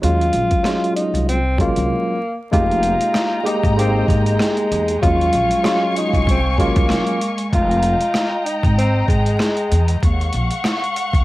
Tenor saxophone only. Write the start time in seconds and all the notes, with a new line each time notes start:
0.04 F4
0.96 D#4
1.28 C4
1.60 A#3
2.52 F4
3.47 D#4
3.78 C4
4.08 G#3
5.02 F4
5.97 D#4
6.30 C4
6.59 A#3
7.54 F4
8.45 D#4
8.78 C4
9.07 G#3